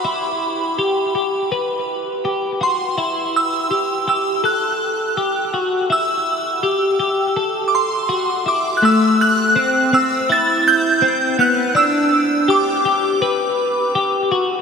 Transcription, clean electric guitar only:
X:1
M:4/4
L:1/8
Q:1/4=82
K:Em
V:1 name="Clean electric guitar"
E2 G G B2 G F | E2 G G A2 G F | E2 G G A2 F E | A,2 C C E2 C B, |
D2 G G B2 G F |]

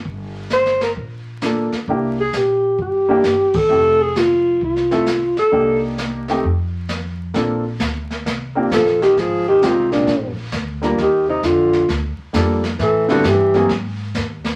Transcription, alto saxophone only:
X:1
M:4/4
L:1/8
Q:"Swing" 1/4=132
K:Cmix
V:1 name="Alto saxophone"
z2 c B z4 | z _A G2 G3 =A- | A _A F2 F3 =A- | A z6 z |
[K:Bb] z6 A G | _A G F D2 z3 | G E F2 z4 | A _G =G2 z4 |]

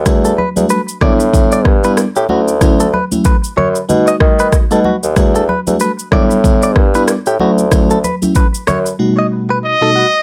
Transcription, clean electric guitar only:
X:1
M:4/4
L:1/16
Q:"Swing 16ths" 1/4=94
K:D
V:1 name="Clean electric guitar"
z A B z B z d z2 d z B z G F z | z A B z B z c z2 ^d z B z A F z | z A B z B z d z2 d z B z G F z | z A B z B z c z2 ^d z B z A F z |]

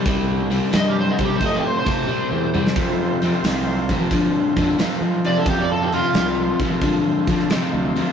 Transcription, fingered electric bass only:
X:1
M:4/4
L:1/16
Q:"Swing" 1/4=89
K:Flyd
V:1 name="Fingered electric bass" clef=bass
C,,4 G,,2 z C,2 z C,2 z E,,2 z | F,,4 C,,3 F,2 z F,,2 z F,3 | F,,4 C,,2 z F,2 z F,2 z D,,2 z |]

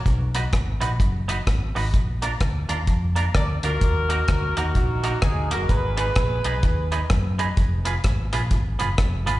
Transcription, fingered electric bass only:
X:1
M:4/4
L:1/8
Q:"Swing" 1/4=128
K:Ebm
V:1 name="Fingered electric bass" clef=bass
=B,,,2 A,,, _B,,, ^F,,,2 A,,, A,,, | B,,,2 =D,, E,, F,,2 D,, D,, | E,,2 =D,, E,, B,,,2 D,, G,,, | A,,,2 B,,, C,, E,,2 G,,2 |
F,,,2 A,,, B,,, A,,, G,,, F,,, A,,, |]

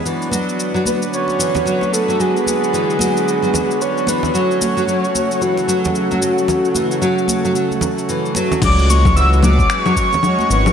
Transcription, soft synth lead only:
X:1
M:4/4
L:1/8
Q:"Swing 16ths" 1/4=112
K:F#m
V:1 name="Soft synth lead"
z3 B c3 A | G6 c B | c4 F4- | F6 z2 |
d' c' e' d' c'3 c' |]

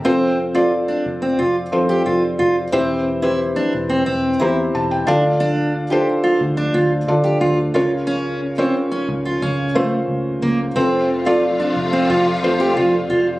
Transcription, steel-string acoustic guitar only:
X:1
M:4/4
L:1/16
Q:1/4=90
K:F
V:1 name="Steel-string acoustic guitar"
C2 z F z D z C F z2 G F z F z | C2 z E z D z C C2 E z3 D z | D2 z G z F z D F z2 G F z F z | _D2 z C z D z F D2 A, z3 B, z |
C2 z F z D z C F z2 G F z F z |]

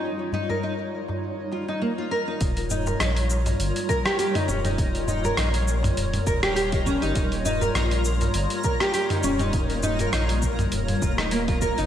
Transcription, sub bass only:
X:1
M:4/4
L:1/16
Q:"Swing 16ths" 1/4=101
K:Ebmix
V:1 name="Sub bass" clef=bass
z16 | E,,,4 B,,,4 G,,, z4 z E,,,2- | E,,,4 B,,,4 E,,, z E,,,4- E,,, G,,, | E,,,4 B,,,4 G,,, z4 z E,,,2- |
E,,,4 B,,,4 E,,, z E,,,4- E,,, G,,, |]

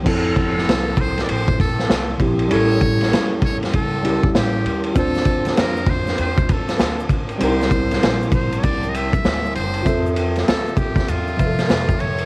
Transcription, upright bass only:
X:1
M:4/4
L:1/16
Q:"Swing 16ths" 1/4=98
K:F
V:1 name="Upright bass" clef=bass
F,,,4 C,,4 A,,,2 B,,,2 C,,2 B,,,2 | A,,,4 E,,4 ^C,,3 z A,,,2 _E,,2 | D,,4 F,,4 E,,3 z D,,3 z | C,,4 B,,,4 C,,3 z D,,2 _G,,,2 |
F,,4 D,,4 E,,3 z F,,4 |]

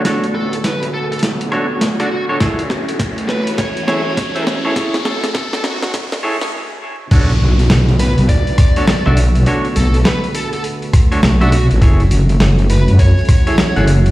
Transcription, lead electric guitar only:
X:1
M:4/4
L:1/16
Q:"Swing 16ths" 1/4=102
K:Bdor
V:1 name="Lead electric guitar"
z2 A z B z A A z4 z F F z | z6 B z c6 z2 | z2 A z A2 F F z8 | z6 B z d6 z2 |
z2 A z B z A A z4 z F F z | z6 B z c6 z2 |]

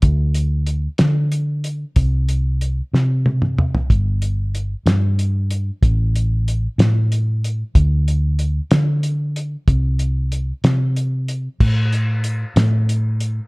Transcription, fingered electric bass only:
X:1
M:6/8
L:1/8
Q:3/8=62
K:Cmix
V:1 name="Fingered electric bass" clef=bass
D,,3 D,3 | C,,3 C,3 | G,,,3 G,,3 | A,,,3 A,,3 |
D,,3 D,3 | C,,3 C,3 | A,,3 A,,3 |]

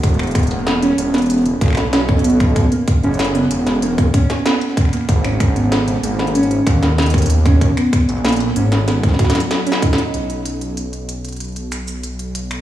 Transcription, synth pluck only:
X:1
M:4/4
L:1/16
Q:1/4=95
K:G#m
V:1 name="Synth pluck"
B, z B,, A, z C z B, z B,, A, z C z B, z | B,, A, z C z B, z B,, A, z C z B, z B,, A, | z C z B, z B,, A, z C z B, z B,, A, z C | z B, z B,, A, z C z B, z F F, z C D D |
z16 |]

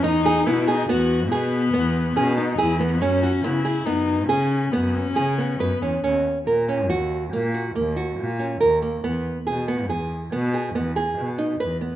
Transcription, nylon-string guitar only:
X:1
M:7/4
L:1/8
Q:1/4=141
K:Elyd
V:1 name="Nylon-string guitar"
D G B, G B,2 G2 B,2 G B, G B, | C F B, G B,2 G2 B,2 G B, B C | C2 A C F2 A, F A, F2 C A A, | B,2 G B, G2 B, G B, G2 D B B, |]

